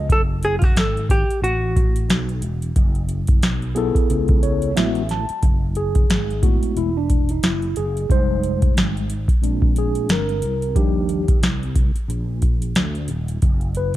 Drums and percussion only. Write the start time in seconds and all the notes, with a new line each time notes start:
0.09 kick, closed hi-hat
0.43 closed hi-hat
0.62 kick, closed hi-hat
0.77 snare, closed hi-hat
0.97 closed hi-hat
1.09 kick, closed hi-hat
1.31 closed hi-hat
1.44 closed hi-hat
1.76 kick, closed hi-hat
1.96 closed hi-hat
2.10 snare, closed hi-hat
2.29 closed hi-hat
2.42 closed hi-hat
2.62 closed hi-hat
2.76 kick, closed hi-hat
2.95 closed hi-hat
3.09 closed hi-hat
3.27 kick, closed hi-hat
3.43 snare, closed hi-hat
3.62 closed hi-hat
3.76 closed hi-hat
3.95 kick, closed hi-hat
4.10 closed hi-hat
4.28 kick, closed hi-hat
4.43 closed hi-hat
4.62 closed hi-hat
4.77 snare, closed hi-hat
4.95 closed hi-hat
5.09 snare, closed hi-hat
5.29 closed hi-hat
5.43 kick, closed hi-hat
5.75 closed hi-hat
5.95 kick, closed hi-hat
6.10 snare, closed hi-hat
6.30 closed hi-hat
6.43 kick, closed hi-hat
6.63 closed hi-hat
6.77 closed hi-hat
7.10 kick, closed hi-hat
7.29 closed hi-hat
7.43 snare, closed hi-hat
7.62 closed hi-hat
7.76 closed hi-hat
7.97 closed hi-hat
8.10 kick, closed hi-hat
8.43 closed hi-hat
8.62 kick, closed hi-hat
8.77 snare, closed hi-hat
8.97 closed hi-hat
9.10 closed hi-hat
9.28 kick, closed hi-hat
9.44 closed hi-hat
9.62 kick
9.76 closed hi-hat
9.95 closed hi-hat
10.09 snare, closed hi-hat
10.29 closed hi-hat
10.42 closed hi-hat
10.62 closed hi-hat
10.76 kick, closed hi-hat
11.09 closed hi-hat
11.28 kick, closed hi-hat
11.43 snare, closed hi-hat
11.63 closed hi-hat
11.76 kick, closed hi-hat
11.96 closed hi-hat
12.10 closed hi-hat
12.42 kick, closed hi-hat
12.62 closed hi-hat
12.75 snare, closed hi-hat
12.95 closed hi-hat
13.08 closed hi-hat
13.28 closed hi-hat
13.42 kick, closed hi-hat
13.61 closed hi-hat
13.75 closed hi-hat